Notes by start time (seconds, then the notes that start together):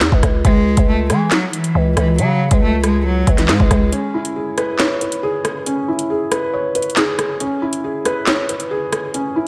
0.00 E2, snare, clap, closed hi-hat
0.12 C#2, kick
0.23 C#2, kick, cross-stick, closed hi-hat
0.45 C#2 G#3, kick, closed hi-hat
0.77 C#2, kick, closed hi-hat
0.88 A3
1.10 E3 G#3, cross-stick, closed hi-hat
1.31 F#3, snare, clap, closed hi-hat
1.53 E3, closed hi-hat
1.64 closed hi-hat
1.75 C#2
1.97 C#2 E3, cross-stick, closed hi-hat
2.18 C#3 F#3, closed hi-hat
2.51 C#2 G#3, kick, closed hi-hat
2.62 A3
2.84 G#3, cross-stick, closed hi-hat
3.05 F#3
3.27 C#2, kick, closed hi-hat
3.38 E3, snare, closed hi-hat
3.48 G#2 G#3, snare, clap, closed hi-hat
3.60 C#2, kick
3.71 C#2, kick, cross-stick, closed hi-hat
3.92 C#4, closed hi-hat
4.14 E4
4.25 closed hi-hat
4.36 G#4
4.58 B4, cross-stick, closed hi-hat
4.79 C#5, snare, clap, closed hi-hat
5.01 B4, closed hi-hat
5.12 closed hi-hat
5.23 G#4
5.45 cross-stick, closed hi-hat
5.66 C#4, closed hi-hat
5.88 E4
5.99 closed hi-hat
6.10 G#4
6.32 B4, cross-stick, closed hi-hat
6.53 C#5
6.75 B4, closed hi-hat
6.82 closed hi-hat
6.90 closed hi-hat
6.96 G#4, snare, clap, closed hi-hat
7.19 cross-stick, closed hi-hat
7.40 C#4, closed hi-hat
7.62 E4
7.73 closed hi-hat
7.84 G#4
8.05 B4, cross-stick, closed hi-hat
8.26 C#5, snare, clap, closed hi-hat
8.49 B4, closed hi-hat
8.60 closed hi-hat
8.71 G#4
8.92 cross-stick, closed hi-hat
9.14 C#4, closed hi-hat
9.36 E4